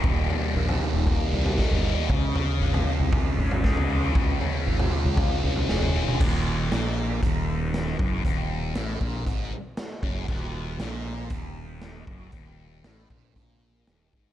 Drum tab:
CC |----------------|----------------|----------------|x---------------|
HH |----------------|----------------|----------------|----x---x---x---|
SD |------------o---|------------o---|------------o---|----oo------o---|
T2 |----------------|----------------|-----o---------o|----------------|
FT |o-o--o--o--o-o--|o-o--o--o--o-o--|o-o--o--o--o-o--|----------------|
BD |o-------o---o---|o-------o---o---|o-------o-------|o-------o-----o-|

CC |----------------|x---------------|----------------|
HH |x---x---x---x---|----x---x---x---|x---x---x---x---|
SD |----oo------o---|----o-------o---|----o-------o---|
T2 |----------------|----------------|----------------|
FT |----------------|----------------|----------------|
BD |o-----o-o-----o-|o-------o-----o-|o-----o-o-----o-|